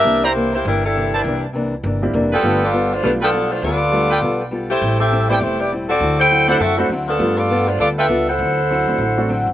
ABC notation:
X:1
M:4/4
L:1/8
Q:"Swing" 1/4=201
K:Gmix
V:1 name="Trumpet section"
z [Ecd_b] z4 z [Ecda] | z6 z [FABg]- | [FABg]2 z3 [FABg] z2 | z3 [FABg] z4 |
z3 [EAcg] z4 | z3 [Ecd^f] z4 | z4 z [FABg] z2 | z8 |]
V:2 name="Saxophone section"
[DG_Be] [_B,EGc]2 [B,EGc] [G,DEB] [G,DEA]2 [G,DEB]- | [G,DE_B] z6 [F,=B,DA]- | [F,B,DA] [B,FAd]2 [A,DFc] [A,DFB] [F,B,DA]2 [A,DFc] | [B,FAd]6 z [A,EGc]- |
[A,EGc] [CGAe]2 [B,EGd] [A,EGc] [B,EGd] z [C^FAd]- | [C^FAd] [EAcg]2 [EAc^f] [CFAe] [EAcf] z [=F,B,DA]- | [F,B,DA] [B,FAd]2 [A,DFc] [B,FAd] [DABe]2 [EAc^f]- | [EAc^f]6- [EAcf] z |]
V:3 name="Grand piano"
[G,_B,CDE] z6 z | z4 z [G,_B,CDE]3 | [G,A,B,DF] z3 [G,A,B,DF] z3 | z2 [G,A,B,DF] z4 z |
z3 [G,A,B,CE]3 z2 | z3 [^F,A,CDE] z [F,A,CD^F] z2 | [G,A,B,DF]4- [G,A,B,DF] z3 | z3 [^F,A,CDE] z [F,A,CD^F] z2 |]
V:4 name="Steel-string acoustic guitar"
[C,E,_B,D] z [C,E,B,D] z [C,E,B,D] z [C,E,B,D] z | [C,E,_B,D] z [C,E,B,D] z [C,E,B,D] z [C,E,B,D] z | [G,B,FA] z [G,B,FA] z [G,B,FA] z [G,B,FA] z | [G,B,FA] z [G,B,FA] z [G,B,FA] z [G,B,FA] z |
[A,,G,CE] z [A,,G,CE] z [A,,G,CE] z [A,,G,CE] z | [D,^F,CE] z [D,F,CE] z [D,F,CE] z [D,F,CE] z | [G,B,FA] z [G,B,FA] z [G,B,FA] z [G,B,FA] z | [D,^F,CE] z [D,F,CE] z [D,F,CE] z [D,F,CE] z |]
V:5 name="Upright bass" clef=bass
C,,4 G,,,4 | C,,4 G,,,2 F,,,2 | G,,,4 B,,,4 | D,,4 B,,,4 |
A,,,4 E,,,4 | D,,4 ^F,,2 D,,2 | G,,4 D,,2 ^C,,2 | D,,3 ^C,, A,,,3 _A,,, |]